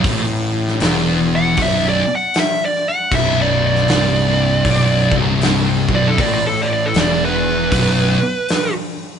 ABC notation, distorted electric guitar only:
X:1
M:4/4
L:1/8
Q:"Swing" 1/4=78
K:Bm
V:1 name="Distorted electric guitar" clef=bass
A,,2 E,,2 B,,, z3 | B,,,2 =C,,2 B,,, C,,2 B,,, | A,,2 E,,2 B,,, z3 |]